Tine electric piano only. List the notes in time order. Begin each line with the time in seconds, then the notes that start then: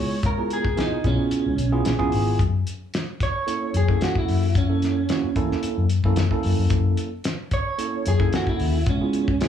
Already playing: B3 E4 F4 G#4
0.38 B3 E4 F4 G#4
0.77 B3 E4 F4 G#4
1.04 B3 E4 F4 G#4
1.72 B3 E4 F4 G#4
1.86 G#4
1.99 B3 E4 F4 G#4
3.47 A#3 C#4 E4 A4
3.89 A#3 C#4 E4 A4
4.69 A#3 C#4 E4 A4
5.09 A#3 C#4 E4 F#4
5.36 A#3 C#4 E4 A4
6.05 A#3 C#4 E4 A4
6.31 A#3 C#4 E4 A4
7.78 A#3 C#4 E4 A4
8.20 A#3 C#4 E4 A4
9.01 B3 E4 F4 G#4
9.41 B3 E4 F4 G#4